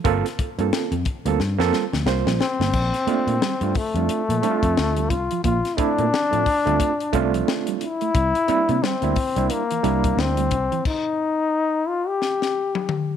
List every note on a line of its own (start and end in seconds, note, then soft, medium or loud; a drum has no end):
0.04 0.22 G1 medium
0.04 0.17 G3 medium
0.04 0.25 A#3 loud
0.04 0.25 C4 loud
0.04 0.26 F4 loud
0.04 0.26 A4 loud
0.04 kick loud
0.04 closed hi-hat medium
0.26 snare soft
0.26 closed hi-hat medium
0.38 0.48 F4 soft
0.38 0.49 A4 soft
0.38 muted clean electric guitar stroke soft
0.38 muted picked electric bass stroke medium
0.38 kick medium
0.38 closed hi-hat medium
0.59 0.70 G2 medium
0.59 0.93 A#3 medium
0.59 0.67 A#3 medium
0.59 0.93 C4 medium
0.59 0.94 F4 medium
0.59 0.94 A4 medium
0.59 closed hi-hat soft
0.73 snare loud
0.92 1.03 F2 loud
0.92 1.01 F3 medium
0.92 closed hi-hat soft
1.05 muted clean electric guitar stroke soft
1.05 kick medium
1.05 closed hi-hat medium
1.25 1.37 D2 medium
1.25 1.35 G3 medium
1.25 1.40 A#3 medium
1.25 1.40 C4 medium
1.25 1.40 F4 medium
1.25 1.41 A4 loud
1.25 closed hi-hat medium
1.39 1.56 G2 loud
1.39 muted clean electric guitar stroke soft
1.39 snare medium
1.59 1.70 F2 medium
1.59 1.83 A#3 loud
1.59 1.84 C4 loud
1.59 1.84 F4 loud
1.59 1.84 A4 loud
1.59 snare medium
1.73 1.86 G3 medium
1.73 snare medium
1.92 2.04 D2 medium
1.92 2.01 F3 medium
1.92 snare medium
2.06 2.23 C2 medium
2.06 2.41 A#3 medium
2.06 2.42 C4 medium
2.06 2.42 F4 medium
2.06 2.42 C5 medium
2.06 snare loud
2.27 2.38 A#1 medium
2.27 2.35 G3 medium
2.27 snare medium
2.40 3.78 C4 loud
2.40 muted clean electric guitar stroke soft
2.40 snare loud
2.59 2.71 G1 medium
2.59 2.68 A#3 medium
2.59 snare medium
2.73 2.91 A#1 medium
2.73 kick loud
2.73 crash medium
2.93 muted clean electric guitar stroke soft
2.93 snare soft
2.93 closed hi-hat medium
3.07 3.35 A3 medium
3.07 3.20 A#3 medium
3.07 3.35 C4 medium
3.07 3.36 D4 medium
3.07 3.36 F4 medium
3.07 muted picked electric bass stroke soft
3.07 closed hi-hat medium
3.27 3.39 A#2 medium
3.27 3.36 A3 medium
3.27 closed hi-hat medium
3.41 3.54 G3 medium
3.41 snare loud
3.61 3.73 G2 medium
3.61 3.76 A3 medium
3.61 3.76 C4 medium
3.61 3.76 D4 medium
3.61 3.76 F4 medium
3.61 muted clean electric guitar stroke soft
3.61 closed hi-hat soft
3.75 5.11 A3 loud
3.75 kick medium
3.75 open hi-hat medium
3.94 4.06 F2 medium
3.94 4.04 G3 medium
3.94 4.20 A3 medium
3.94 4.20 C4 medium
3.94 4.21 D4 medium
3.94 4.21 F4 medium
3.94 closed hi-hat medium
4.08 muted picked electric bass stroke soft
4.08 muted clean electric guitar stroke soft
4.08 closed hi-hat medium
4.29 4.40 A#2 medium
4.29 4.38 F3 medium
4.29 closed hi-hat medium
4.43 4.56 G3 medium
4.43 5.13 A3 medium
4.43 5.13 C4 medium
4.43 5.13 D4 medium
4.43 4.51 E4 medium
4.43 closed hi-hat medium
4.50 5.16 F4 loud
4.63 4.74 F2 medium
4.63 kick medium
4.63 closed hi-hat medium
4.77 5.11 D2 medium
4.77 snare loud
4.97 5.06 G3 medium
4.97 closed hi-hat medium
5.10 5.27 C2 medium
5.10 5.44 F4 loud
5.10 muted clean electric guitar stroke soft
5.10 kick medium
5.10 closed hi-hat medium
5.31 5.40 F3 medium
5.31 closed hi-hat medium
5.44 5.61 A#1 medium
5.44 5.57 A#3 medium
5.44 5.79 F4 medium
5.44 kick loud
5.44 closed hi-hat medium
5.65 snare soft
5.65 closed hi-hat medium
5.77 6.05 A3 medium
5.77 6.05 C4 medium
5.77 7.55 D4 loud
5.77 6.06 D4 medium
5.77 6.06 E4 loud
5.77 muted picked electric bass stroke soft
5.77 muted clean electric guitar stroke soft
5.77 kick loud
5.77 closed hi-hat medium
5.98 6.10 A#2 loud
5.98 6.08 A3 medium
5.98 closed hi-hat soft
6.14 snare loud
6.31 6.44 A2 medium
6.31 6.41 F3 medium
6.31 6.46 A3 medium
6.31 6.46 C4 medium
6.31 6.46 D4 medium
6.31 6.46 F4 medium
6.31 closed hi-hat soft
6.46 muted clean electric guitar stroke soft
6.46 kick medium
6.46 open hi-hat medium
6.65 6.78 D2 medium
6.65 6.75 G3 medium
6.65 6.90 A3 loud
6.65 6.90 C4 medium
6.65 6.91 D4 medium
6.65 6.91 F4 loud
6.65 closed hi-hat medium
6.80 kick medium
6.80 closed hi-hat medium
7.00 closed hi-hat medium
7.13 7.41 C2 loud
7.13 7.26 G3 medium
7.13 7.83 A3 loud
7.13 7.83 C4 medium
7.13 7.21 C#4 medium
7.13 7.84 F4 loud
7.13 kick medium
7.13 closed hi-hat medium
7.20 7.87 D4 loud
7.34 7.42 F3 medium
7.34 closed hi-hat medium
7.48 snare loud
7.67 7.76 G3 medium
7.67 closed hi-hat medium
7.81 8.85 E4 loud
7.81 muted clean electric guitar stroke soft
7.81 closed hi-hat medium
8.01 8.10 A3 medium
8.01 closed hi-hat soft
8.15 8.32 C2 loud
8.15 kick loud
8.15 closed hi-hat medium
8.35 muted clean electric guitar stroke soft
8.35 closed hi-hat medium
8.48 8.76 G3 medium
8.48 8.76 A#3 medium
8.48 8.61 C4 medium
8.48 8.76 D4 medium
8.48 8.77 E4 loud
8.48 muted picked electric bass stroke soft
8.48 closed hi-hat medium
8.69 8.80 C3 loud
8.69 8.77 A#3 medium
8.69 closed hi-hat soft
8.82 8.95 G3 medium
8.82 9.53 C4 loud
8.82 snare loud
9.02 9.14 D2 medium
9.02 9.16 G3 medium
9.02 9.17 A#3 medium
9.02 9.17 D4 medium
9.02 9.17 E4 medium
9.02 muted clean electric guitar stroke soft
9.02 closed hi-hat soft
9.16 kick loud
9.16 open hi-hat medium
9.36 9.48 C2 medium
9.36 9.61 G3 medium
9.36 9.45 G3 medium
9.36 9.61 A#3 medium
9.36 9.61 D4 medium
9.36 9.61 E4 medium
9.36 closed hi-hat medium
9.50 10.21 A#3 loud
9.50 muted clean electric guitar stroke soft
9.50 closed hi-hat medium
9.71 9.79 E3 medium
9.71 closed hi-hat medium
9.83 10.12 C2 loud
9.83 10.53 G3 medium
9.83 9.96 G3 medium
9.83 10.54 A#3 medium
9.83 10.54 D4 medium
9.83 10.54 E4 medium
9.83 closed hi-hat medium
10.04 kick loud
10.04 closed hi-hat medium
10.17 10.51 D2 medium
10.17 10.86 C4 loud
10.17 snare loud
10.37 10.46 G3 medium
10.37 closed hi-hat medium
10.51 10.68 C2 medium
10.51 muted clean electric guitar stroke soft
10.51 kick medium
10.51 closed hi-hat medium
10.72 10.80 E3 medium
10.72 closed hi-hat medium
10.85 11.89 D#4 loud
10.85 kick loud
10.85 crash medium
11.88 12.09 F4 loud
12.07 13.17 G4 medium
12.22 snare medium
12.42 snare medium
12.75 high tom medium
12.89 mid tom medium